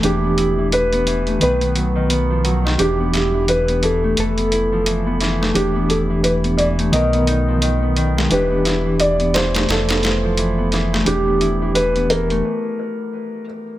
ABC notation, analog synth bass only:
X:1
M:4/4
L:1/8
Q:"Swing 16ths" 1/4=87
K:Ephr
V:1 name="Analog synth bass" clef=bass
E,,,4 B,,,4 | E,,,4 F,,,4 | E,,,4 B,,,4 | E,,,4 F,,,4 |
E,,,4 z4 |]